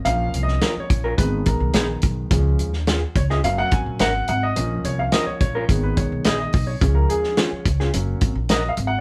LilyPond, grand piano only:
<<
  \new Staff \with { instrumentName = "Grand piano" } { \time 4/4 \key des \major \tempo 4 = 107 \tuplet 3/2 { f''4 ees''8~ ees''8 des''4 } ces''8 bes'4.~ | bes'4 r8 des''16 ees''16 f''16 ges''16 aes''8 ges''8 ges''16 ees''16~ | ees''8 des''16 f''16 ees''16 des''16 des''8. ces''16 des''8 ees''16 ees''8 des''16~ | des''16 bes'16 aes'8 des''4. r8 \tuplet 3/2 { ees''8 f''8 ges''8 } | }
  \new Staff \with { instrumentName = "Grand piano" } { \time 4/4 \key des \major <f bes des'>2 <ees aes ces'>2 | <f aes des'>8 r4. <ges bes des'>4. r8 | <f bes des'>2 <ees aes ces'>4. r8 | <f aes des'>4. r8 <ges bes des'>8 r4. | }
>>